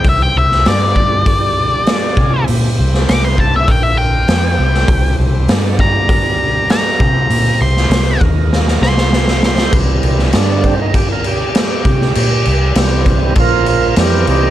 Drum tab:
CC |----------------|----------------|----------------|----------------|
HH |o---o---o---o---|o---o---o---o---|o---o---o---o---|o---o-----------|
SD |---oo-------o---|---oo-------o--o|----o-------o---|---oo---oooooooo|
BD |o-----o-o-----o-|------o-o-------|o-----o-o-----o-|------o---------|

CC |x-x-x-x-x-x-x-x-|x-x-x-x-x-x-x-x-|
HH |----------------|----------------|
SD |---oo-------o--o|----o-------o---|
BD |o-----o-o-----o-|------o-o-------|